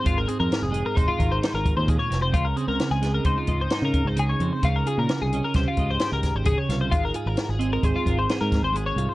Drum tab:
HH |xxxxxxxxxx|xxxxxxxxxx|xxxxxxxxxx|xxxxxxxxxx|
SD |--o---o--o|--oo--o---|--o-o-oo-o|--o---oo--|
BD |o---oo-oo-|o---oo-o--|o---oo-oo-|o---oo-o--|